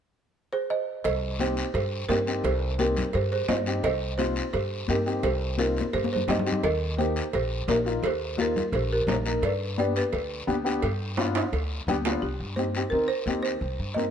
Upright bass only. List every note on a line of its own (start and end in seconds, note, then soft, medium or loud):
1.05 1.61 C2 medium
1.74 2.02 G2 medium
2.09 2.37 G2 medium
2.44 3.00 C2 loud
3.14 3.42 G2 medium
3.49 3.77 G2 medium
3.83 4.39 C2 medium
4.54 4.82 G2 medium
4.89 5.17 G2 medium
5.23 5.79 C2 loud
5.94 6.22 G2 medium
6.28 6.56 G2 medium
6.63 7.19 D#2 medium
7.33 7.61 A#1 medium
7.68 7.96 A#1 medium
8.02 8.59 D#2 medium
8.72 9.01 A#1 medium
9.07 9.35 A#1 medium
9.42 9.98 G2 loud
10.13 10.41 D2 medium
10.48 10.76 D2 medium
10.83 11.39 G2 loud
11.53 11.80 D2 loud
11.87 12.15 D2 medium
12.22 12.36 C2 medium
12.40 12.82 G2 medium
12.92 13.06 D#2 medium
13.26 13.54 D#2 medium
13.61 13.75 C2 medium
13.79 14.11 G2 medium